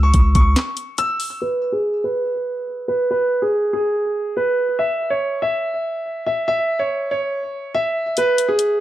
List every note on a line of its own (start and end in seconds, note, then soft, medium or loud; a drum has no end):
0.00 0.12 C#2 loud
0.00 0.33 C#6 medium
0.14 0.34 C#2 loud
0.14 kick loud
0.14 closed hi-hat medium
0.35 0.55 C#2 loud
0.35 0.95 C#6 medium
0.35 kick medium
0.35 closed hi-hat medium
0.56 snare loud
0.56 clap medium
0.56 closed hi-hat medium
0.77 closed hi-hat medium
0.98 1.38 E6 loud
0.98 closed hi-hat medium
1.20 open hi-hat medium
1.41 1.71 B4 loud
1.72 2.02 G#4 medium
2.04 2.84 B4 medium
2.88 3.08 B4 medium
3.11 3.40 B4 medium
3.42 3.72 G#4 medium
3.73 4.33 G#4 medium
4.37 4.76 B4 medium
4.79 5.09 E5 medium
5.10 5.40 C#5 medium
5.42 6.23 E5 medium
6.26 6.46 E5 medium
6.48 6.78 E5 loud
6.79 7.09 C#5 medium
7.11 7.71 C#5 medium
7.74 8.14 E5 medium
8.17 8.47 B4 loud
8.17 closed hi-hat medium
8.38 closed hi-hat medium
8.48 8.78 G#4 medium
8.59 closed hi-hat medium